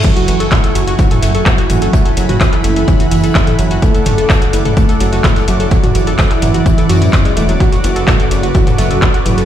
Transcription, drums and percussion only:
0.04 kick loud
0.04 closed hi-hat medium
0.04 crash medium
0.17 closed hi-hat medium
0.17 closed hi-hat soft
0.28 closed hi-hat medium
0.28 closed hi-hat loud
0.40 closed hi-hat medium
0.51 kick loud
0.51 snare loud
0.51 clap loud
0.51 closed hi-hat medium
0.51 mid tom medium
0.64 closed hi-hat medium
0.75 closed hi-hat medium
0.75 closed hi-hat loud
0.88 closed hi-hat medium
0.98 kick loud
0.98 closed hi-hat medium
1.11 closed hi-hat soft
1.11 closed hi-hat medium
1.11 mid tom medium
1.22 snare loud
1.22 closed hi-hat loud
1.22 closed hi-hat medium
1.35 closed hi-hat medium
1.46 kick loud
1.46 clap loud
1.46 closed hi-hat medium
1.58 closed hi-hat medium
1.70 closed hi-hat loud
1.70 closed hi-hat medium
1.70 mid tom medium
1.82 closed hi-hat medium
1.82 closed hi-hat soft
1.93 kick loud
1.93 closed hi-hat medium
2.06 closed hi-hat medium
2.17 closed hi-hat medium
2.17 closed hi-hat loud
2.29 closed hi-hat medium
2.29 mid tom medium
2.41 kick loud
2.41 snare loud
2.41 clap loud
2.41 closed hi-hat medium
2.53 clap soft
2.53 closed hi-hat medium
2.64 closed hi-hat medium
2.64 closed hi-hat loud
2.76 closed hi-hat medium
2.88 kick loud
2.88 closed hi-hat medium
2.88 mid tom medium
3.00 closed hi-hat soft
3.00 closed hi-hat medium
3.11 closed hi-hat loud
3.11 open hi-hat medium
3.24 closed hi-hat medium
3.35 kick loud
3.35 snare loud
3.35 clap loud
3.35 closed hi-hat medium
3.47 closed hi-hat medium
3.47 mid tom medium
3.59 closed hi-hat loud
3.59 closed hi-hat medium
3.71 closed hi-hat medium
3.82 kick loud
3.82 closed hi-hat medium
3.82 closed hi-hat loud
3.95 closed hi-hat medium
3.95 closed hi-hat soft
4.05 closed hi-hat medium
4.05 closed hi-hat loud
4.05 mid tom medium
4.18 closed hi-hat medium
4.30 kick loud
4.30 snare loud
4.30 clap loud
4.30 closed hi-hat medium
4.42 closed hi-hat medium
4.53 closed hi-hat medium
4.53 closed hi-hat loud
4.65 closed hi-hat medium
4.65 mid tom medium
4.77 kick loud
4.77 closed hi-hat medium
4.88 closed hi-hat soft
4.88 closed hi-hat medium
5.00 closed hi-hat loud
5.00 closed hi-hat medium
5.13 snare medium
5.13 closed hi-hat medium
5.24 kick loud
5.24 snare loud
5.24 clap loud
5.24 closed hi-hat medium
5.24 mid tom medium
5.36 snare medium
5.36 closed hi-hat medium
5.48 closed hi-hat medium
5.48 closed hi-hat loud
5.60 closed hi-hat medium
5.71 kick loud
5.71 closed hi-hat medium
5.84 closed hi-hat medium
5.84 mid tom medium
5.95 closed hi-hat loud
5.95 closed hi-hat medium
6.07 closed hi-hat medium
6.18 kick loud
6.18 snare loud
6.18 clap loud
6.18 closed hi-hat medium
6.31 clap soft
6.31 closed hi-hat medium
6.42 closed hi-hat loud
6.42 closed hi-hat medium
6.42 mid tom medium
6.54 closed hi-hat medium
6.66 kick loud
6.66 closed hi-hat medium
6.78 closed hi-hat medium
6.89 closed hi-hat loud
6.89 open hi-hat medium
7.02 closed hi-hat medium
7.02 mid tom medium
7.13 kick loud
7.13 snare loud
7.13 clap loud
7.13 closed hi-hat medium
7.25 closed hi-hat medium
7.37 closed hi-hat loud
7.37 closed hi-hat medium
7.49 closed hi-hat medium
7.60 kick loud
7.60 closed hi-hat medium
7.73 closed hi-hat medium
7.84 closed hi-hat loud
7.84 closed hi-hat medium
7.96 closed hi-hat medium
8.08 kick loud
8.08 snare loud
8.08 clap loud
8.08 closed hi-hat medium
8.08 mid tom medium
8.20 closed hi-hat medium
8.31 closed hi-hat medium
8.31 closed hi-hat loud
8.43 closed hi-hat medium
8.54 kick loud
8.54 closed hi-hat medium
8.67 closed hi-hat medium
8.67 closed hi-hat soft
8.67 mid tom loud
8.78 snare loud
8.78 closed hi-hat loud
8.78 closed hi-hat medium
8.91 closed hi-hat medium
9.02 kick loud
9.02 clap loud
9.02 closed hi-hat medium
9.14 closed hi-hat medium
9.25 closed hi-hat medium
9.25 closed hi-hat loud
9.25 mid tom medium
9.38 closed hi-hat medium
9.38 closed hi-hat soft

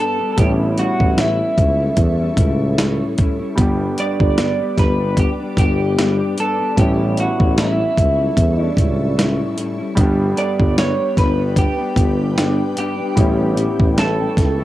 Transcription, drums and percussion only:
0.38 kick loud
0.38 closed hi-hat medium
0.78 closed hi-hat medium
1.00 kick medium
1.18 snare loud
1.18 closed hi-hat medium
1.58 kick medium
1.58 closed hi-hat medium
1.97 kick medium
1.97 closed hi-hat medium
2.37 kick loud
2.37 closed hi-hat medium
2.78 snare loud
2.78 closed hi-hat medium
3.18 kick medium
3.18 closed hi-hat medium
3.58 kick loud
3.58 closed hi-hat medium
3.98 closed hi-hat medium
4.20 kick medium
4.38 snare medium
4.38 closed hi-hat medium
4.78 kick medium
4.78 snare soft
4.78 closed hi-hat medium
5.17 kick medium
5.17 closed hi-hat medium
5.57 kick loud
5.57 closed hi-hat medium
5.99 snare loud
5.99 closed hi-hat medium
6.38 closed hi-hat medium
6.77 kick loud
6.77 closed hi-hat medium
7.17 closed hi-hat medium
7.40 kick medium
7.58 snare loud
7.58 closed hi-hat medium
7.97 kick medium
7.97 closed hi-hat medium
8.37 kick medium
8.37 closed hi-hat medium
8.77 kick loud
8.77 closed hi-hat medium
9.19 snare loud
9.19 closed hi-hat medium
9.58 closed hi-hat medium
9.97 kick loud
9.97 closed hi-hat medium
10.37 closed hi-hat medium
10.60 kick medium
10.78 snare loud
10.78 closed hi-hat medium
11.17 kick medium
11.17 snare soft
11.17 closed hi-hat medium
11.56 kick medium
11.56 closed hi-hat medium
11.96 kick loud
11.96 closed hi-hat medium
12.38 snare loud
12.38 closed hi-hat medium
12.77 closed hi-hat medium
13.17 kick loud
13.17 closed hi-hat loud
13.57 closed hi-hat medium
13.80 kick medium
13.98 snare loud
13.98 closed hi-hat medium
14.37 kick medium
14.37 snare soft
14.37 closed hi-hat medium

